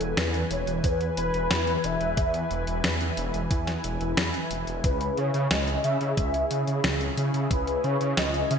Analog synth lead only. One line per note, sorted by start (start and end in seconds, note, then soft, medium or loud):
0.00 0.19 A4 medium
0.17 0.50 B4 medium
0.51 0.86 C#5 medium
0.84 1.17 B4 loud
1.17 1.85 B4 loud
1.84 2.51 E5 loud
4.84 5.19 B4 medium
5.17 5.52 C#5 medium
5.51 5.83 D#5 loud
5.84 6.15 E5 loud
6.17 6.48 E5 loud
7.51 7.85 B4 medium
7.84 8.17 C#5 loud
8.17 8.52 D#5 loud
8.51 8.59 E5 loud